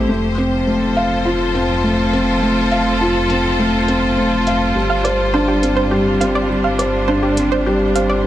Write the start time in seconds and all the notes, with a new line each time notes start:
Already playing: G3 A3 C4 G4 A4 C5
0.09 F1 F3 A3
0.38 C4, closed hi-hat
0.48 F4
0.58 A4
0.67 A3
0.96 F5, closed hi-hat
1.25 F4
1.55 C4, closed hi-hat
1.84 A3
2.13 C4, closed hi-hat
2.42 A3
2.72 F5, closed hi-hat
3.01 F4
3.30 C4, closed hi-hat
3.59 A3
3.88 C4, closed hi-hat
4.17 A3
4.47 F5, closed hi-hat
4.75 G1 G3
4.90 F5
5.04 C5 D5, closed hi-hat
5.34 D4 C5
5.48 G4
5.60 C4 D4, closed hi-hat
5.77 C5
5.91 G3 G4
6.21 C4 F5, closed hi-hat
6.35 D5
6.50 G3
6.64 F5
6.79 C5 D5, closed hi-hat
7.08 D4 C5
7.23 G4
7.37 C4, closed hi-hat
7.52 C5
7.66 G3 G4
7.95 C4 F5, closed hi-hat
8.10 D5